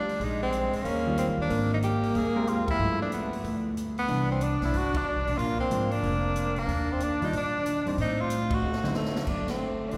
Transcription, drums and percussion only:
0.09 open hi-hat soft
0.21 open hi-hat soft
0.52 closed hi-hat soft
0.73 open hi-hat soft
0.85 open hi-hat soft
1.17 closed hi-hat medium
1.50 open hi-hat soft
1.82 closed hi-hat soft
2.03 open hi-hat soft
2.15 open hi-hat soft
2.47 closed hi-hat soft
2.68 kick medium
2.68 ride medium
3.12 closed hi-hat medium
3.33 open hi-hat soft
3.44 open hi-hat soft
3.77 closed hi-hat medium
3.98 open hi-hat soft
4.08 open hi-hat soft
4.41 closed hi-hat soft
4.62 snare soft
4.62 open hi-hat soft
4.74 open hi-hat soft
4.94 kick medium
4.94 ride medium
5.27 open hi-hat soft
5.39 open hi-hat soft
5.59 kick soft
5.71 closed hi-hat soft
5.91 open hi-hat soft
6.03 open hi-hat soft
6.36 closed hi-hat medium
6.56 open hi-hat soft
6.69 open hi-hat soft
7.00 closed hi-hat medium
7.22 open hi-hat soft
7.33 open hi-hat soft
7.66 closed hi-hat soft
7.86 open hi-hat soft
7.98 open hi-hat soft
8.30 closed hi-hat medium
8.50 kick medium
8.50 ride medium
8.73 snare medium
8.84 snare medium
8.94 snare medium
9.05 snare medium
9.16 snare medium
9.27 kick medium
9.27 crash medium
9.48 snare medium
9.48 ride medium
9.91 open hi-hat soft

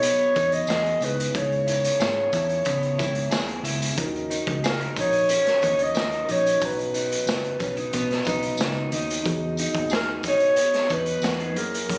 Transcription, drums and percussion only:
0.03 closed hi-hat medium
0.03 tambourine medium
0.36 kick loud
0.36 closed hi-hat medium
0.36 tambourine soft
0.52 closed hi-hat medium
0.67 snare loud
0.67 tambourine medium
0.86 closed hi-hat soft
1.01 closed hi-hat medium
1.01 tambourine soft
1.20 closed hi-hat medium
1.35 kick loud
1.35 closed hi-hat loud
1.52 closed hi-hat soft
1.68 closed hi-hat medium
1.68 tambourine soft
1.84 closed hi-hat medium
2.00 snare loud
2.00 tambourine medium
2.33 kick loud
2.33 closed hi-hat medium
2.33 tambourine soft
2.49 closed hi-hat soft
2.65 kick loud
2.65 closed hi-hat medium
2.65 tambourine medium
2.83 closed hi-hat soft
2.99 kick loud
2.99 closed hi-hat medium
2.99 tambourine medium
3.15 closed hi-hat medium
3.31 snare loud
3.31 tambourine medium
3.48 closed hi-hat soft
3.64 closed hi-hat medium
3.64 tambourine soft
3.82 closed hi-hat medium
3.98 kick loud
3.98 closed hi-hat loud
4.15 closed hi-hat soft
4.31 closed hi-hat medium
4.31 tambourine soft
4.47 kick loud
4.47 closed hi-hat medium
4.64 snare loud
4.64 tambourine medium
4.81 closed hi-hat soft
4.96 kick loud
4.96 closed hi-hat medium
4.96 tambourine soft
5.13 closed hi-hat soft
5.29 closed hi-hat medium
5.29 tambourine medium
5.46 snare soft
5.46 closed hi-hat soft
5.62 kick medium
5.62 closed hi-hat medium
5.62 tambourine soft
5.79 closed hi-hat medium
5.95 snare loud
5.95 tambourine medium
6.12 closed hi-hat soft
6.29 closed hi-hat medium
6.46 closed hi-hat medium
6.62 kick loud
6.62 closed hi-hat loud
6.79 closed hi-hat soft
6.94 closed hi-hat medium
6.94 tambourine soft
7.12 closed hi-hat medium
7.27 snare loud
7.27 tambourine medium
7.44 closed hi-hat soft
7.60 kick loud
7.60 closed hi-hat medium
7.60 tambourine soft
7.77 closed hi-hat soft
7.93 kick medium
7.93 closed hi-hat medium
7.93 tambourine medium
8.11 snare soft
8.11 closed hi-hat soft
8.25 kick loud
8.25 closed hi-hat medium
8.25 tambourine medium
8.43 closed hi-hat medium
8.57 snare loud
8.57 tambourine medium
8.92 closed hi-hat medium
9.10 closed hi-hat medium
9.26 kick loud
9.26 closed hi-hat loud
9.57 closed hi-hat medium
9.57 tambourine medium
9.75 kick loud
9.75 closed hi-hat medium
9.90 snare loud
9.90 tambourine medium
10.23 kick loud
10.23 closed hi-hat medium
10.23 tambourine soft
10.40 closed hi-hat medium
10.56 closed hi-hat medium
10.56 tambourine medium
10.74 snare soft
10.74 closed hi-hat soft
10.89 kick loud
10.89 closed hi-hat medium
10.89 tambourine medium
11.06 closed hi-hat medium
11.22 snare loud
11.22 tambourine medium
11.40 closed hi-hat soft
11.56 closed hi-hat medium
11.74 closed hi-hat medium
11.90 kick loud
11.90 closed hi-hat loud

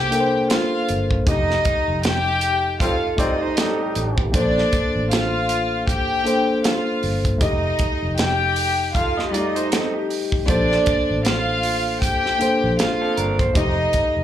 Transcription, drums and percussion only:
0.12 closed hi-hat medium
0.50 snare loud
0.50 closed hi-hat loud
0.89 closed hi-hat medium
1.11 kick medium
1.27 kick loud
1.27 closed hi-hat medium
1.50 snare soft
1.65 kick medium
1.65 closed hi-hat medium
2.03 snare loud
2.03 closed hi-hat medium
2.41 closed hi-hat medium
2.80 kick medium
2.80 closed hi-hat medium
3.18 kick medium
3.18 closed hi-hat medium
3.57 snare loud
3.57 closed hi-hat medium
3.95 closed hi-hat medium
4.18 kick loud
4.34 kick loud
4.34 closed hi-hat medium
4.58 snare soft
4.73 kick medium
4.73 closed hi-hat medium
5.11 snare loud
5.11 closed hi-hat medium
5.49 closed hi-hat medium
5.88 kick medium
5.88 closed hi-hat medium
6.27 closed hi-hat medium
6.64 snare loud
6.64 closed hi-hat medium
7.03 open hi-hat soft
7.25 kick medium
7.25 closed hi-hat soft
7.41 kick loud
7.41 closed hi-hat loud
7.79 kick medium
7.79 closed hi-hat medium
8.18 snare loud
8.18 closed hi-hat medium
8.56 open hi-hat medium
8.95 kick medium
8.95 closed hi-hat medium
9.19 snare soft
9.34 closed hi-hat medium
9.56 closed hi-hat medium
9.72 snare loud
9.72 closed hi-hat medium
10.10 open hi-hat soft
10.32 kick medium
10.48 kick loud
10.48 closed hi-hat medium
10.72 snare soft
10.86 kick loud
10.86 closed hi-hat medium
11.25 snare loud
11.25 closed hi-hat medium
11.63 open hi-hat medium
12.02 kick medium
12.02 closed hi-hat medium
12.26 snare soft
12.41 closed hi-hat medium
12.79 snare loud
12.79 closed hi-hat medium
13.17 closed hi-hat medium
13.39 kick loud
13.39 closed hi-hat soft
13.55 kick loud
13.55 closed hi-hat medium
13.93 kick medium
13.93 closed hi-hat medium

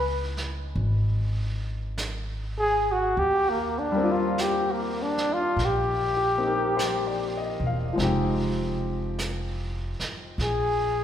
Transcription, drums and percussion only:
0.37 snare soft
0.77 brush sweep soft
1.98 brush sweep soft
1.98 snare soft
1.98 hi-hat pedal soft
3.18 brush sweep soft
4.38 brush sweep soft
4.38 snare soft
4.38 hi-hat pedal soft
5.17 snare soft
5.59 brush sweep soft
5.59 snare soft
6.79 brush sweep soft
6.79 snare soft
6.79 hi-hat pedal medium
7.98 brush sweep soft
7.98 snare soft
9.19 brush sweep soft
9.19 snare soft
9.19 hi-hat pedal medium
10.00 snare soft
10.39 brush sweep soft
10.39 snare soft

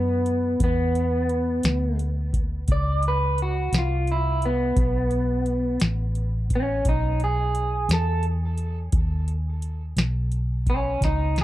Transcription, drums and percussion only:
0.26 closed hi-hat soft
0.60 kick medium
0.60 closed hi-hat medium
0.95 closed hi-hat medium
1.29 closed hi-hat medium
1.63 snare medium
1.63 closed hi-hat medium
1.99 closed hi-hat medium
2.33 kick medium
2.33 closed hi-hat medium
2.68 kick medium
2.68 closed hi-hat medium
3.03 closed hi-hat medium
3.38 closed hi-hat medium
3.73 snare medium
3.73 closed hi-hat medium
4.07 closed hi-hat soft
4.42 closed hi-hat soft
4.76 kick medium
4.76 closed hi-hat medium
5.11 closed hi-hat medium
5.46 closed hi-hat soft
5.80 snare medium
5.80 closed hi-hat medium
6.15 closed hi-hat medium
6.50 kick medium
6.50 closed hi-hat medium
6.85 kick medium
6.85 closed hi-hat medium
7.20 closed hi-hat medium
7.55 closed hi-hat medium
7.89 snare medium
7.89 closed hi-hat medium
8.23 closed hi-hat medium
8.58 closed hi-hat soft
8.92 kick medium
8.92 closed hi-hat medium
9.28 closed hi-hat medium
9.62 closed hi-hat medium
9.97 snare medium
9.97 closed hi-hat medium
10.32 closed hi-hat soft
10.66 kick medium
10.66 closed hi-hat soft
11.01 kick medium
11.01 snare medium
11.01 closed hi-hat medium
11.36 snare medium
11.36 closed hi-hat soft

